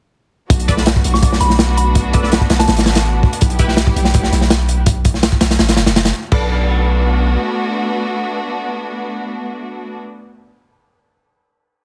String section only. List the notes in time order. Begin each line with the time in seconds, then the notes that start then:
0.50 A3 B3 D4 F#4
3.41 G3 E4 G4
6.32 A3 B3 D4 F#4